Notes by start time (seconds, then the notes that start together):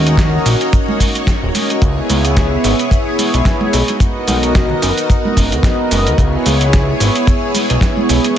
Already playing: D#2 A#3 C#4 D#4 F#4 A#4 C#5 D#5
0.07 closed hi-hat, shaker
0.17 kick, snare, closed hi-hat, shaker
0.33 low conga
0.46 A#1, open hi-hat, shaker
0.61 closed hi-hat, shaker
0.73 kick, closed hi-hat, shaker
0.88 high conga
1.00 kick, open hi-hat, shaker
1.15 closed hi-hat, shaker
1.27 kick, snare, closed hi-hat, shaker
1.43 D#1 C#4 F#4 A#4 D#5
1.54 C#4 F#4 A#4 D#5, open hi-hat, high conga, shaker
1.70 closed hi-hat, shaker
1.81 C#2 B3 E4 G#4 C#5, kick, closed hi-hat, shaker
2.10 C#2, open hi-hat, high conga, shaker
2.25 closed hi-hat, shaker
2.37 kick, snare, closed hi-hat, shaker
2.64 G#1, open hi-hat, shaker
2.79 closed hi-hat, shaker
2.91 kick, closed hi-hat, shaker
3.18 B3 E4 G#4 C#5, open hi-hat, high conga, shaker
3.34 B1, closed hi-hat, shaker
3.45 kick, snare, closed hi-hat, shaker
3.61 high conga
3.73 B1 D#4 F#4, open hi-hat, shaker
3.88 closed hi-hat, high conga, shaker
4.00 B3 F#4 A#4 D#5, kick, closed hi-hat, shaker
4.28 B1, open hi-hat, high conga, shaker
4.43 closed hi-hat, shaker
4.55 kick, snare, closed hi-hat, shaker
4.70 low conga
4.82 F#1, open hi-hat, shaker
4.98 closed hi-hat, shaker
5.10 kick, closed hi-hat, shaker
5.25 high conga
5.36 F#1 B3 F#4 A#4 D#5, kick, open hi-hat, shaker
5.52 D#2, closed hi-hat, shaker
5.63 kick, snare, closed hi-hat, shaker
5.91 F#1, open hi-hat, high conga, shaker
6.07 D#2, closed hi-hat, shaker
6.18 C#2 B3 E4 G#4 C#5, kick, closed hi-hat, shaker
6.46 C#2, open hi-hat, high conga, shaker
6.61 closed hi-hat, shaker
6.73 kick, snare, closed hi-hat, shaker
7.00 G#1, open hi-hat, shaker
7.16 closed hi-hat, shaker
7.27 kick, closed hi-hat, shaker
7.54 B3 E4 G#4 C#5, open hi-hat, high conga, shaker
7.70 B1, closed hi-hat, shaker
7.81 kick, snare, closed hi-hat, shaker
7.97 high conga
8.09 B1, open hi-hat, shaker
8.24 closed hi-hat, high conga, shaker